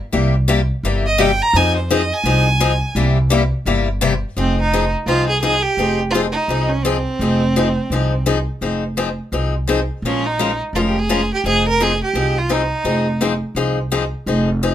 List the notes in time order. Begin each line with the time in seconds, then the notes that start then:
0.12 C2 C3 G3 A#3 E4 G4
0.48 C3 G3 A#3 E4 G4
0.83 G1 C3 G3 A#3 E4 G4
1.06 D#5
1.18 C3 G3 A#3 E4 G4 G5
1.42 A#5
1.53 F2 F3 C4 D#4 G#4 G#5
1.76 C5
1.90 F3 C4 D#4 G#4 D#5
2.14 G#5
2.24 C2 F3 C4 D#4 G#4
2.60 F3 C4 D#4 G#4
2.95 C2 C3 G3 A#3 E4 G4
3.30 C3 G3 A#3 E4 G4
3.65 G1 C3 G3 A#3 E4 G4
4.01 C3 G3 A#3 E4 G4
4.37 F1 F3 C4 D#4 G#4
4.60 D#4
4.73 F3 C4 D#4 G#4
5.06 C2 F3 C4 D#4 F4 G#4
5.29 G#4
5.42 F3 C4 D#4 G#4
5.62 G4
5.77 F1 F3 C4 D#4 G#4
6.11 F3 D#4 F4
6.15 C4 G#4
6.32 D#4
6.48 C2 F3 C4 D#4 G#4
6.68 C#4
6.82 F3 C4 D#4 G#4
7.19 F1 F3 C4 D#4 G#4
7.56 F3 C4 D#4 G#4
7.90 C2 F3 C4 D#4 G#4
8.26 F3 C4 D#4 G#4
8.61 F1 F3 C4 D#4 G#4
8.97 F3 C4 D#4 G#4
9.32 C2 F3 C4 D#4 G#4
9.67 F3 C4 D#4 G#4
10.02 A#1 F3 G#3 C#4 F4 A#4
10.26 D#4
10.39 F3 G#3 C#4 F4 A#4
10.73 F1 F3 G#3 C#4 F4 A#4
10.88 G4
10.99 G#4
11.09 F3 G#3 C#4 F4 A#4
11.34 G4
11.44 F1 F3 C4 D#4 G#4
11.68 A#4
11.80 F3 C4 D#4 G#4
12.04 G4
12.14 C2 F3 C4 D#4 G#4
12.38 F4
12.49 F3 C4 D#4 G#4
12.84 F1 F3 C4 D#4 G#4
13.21 F3 C4 D#4 G#4
13.55 C2 F3 C4 D#4 G#4
13.92 F3 C4 D#4 G#4
14.26 F1 F3 C4 D#4 G#4
14.63 F3 C4 D#4 G#4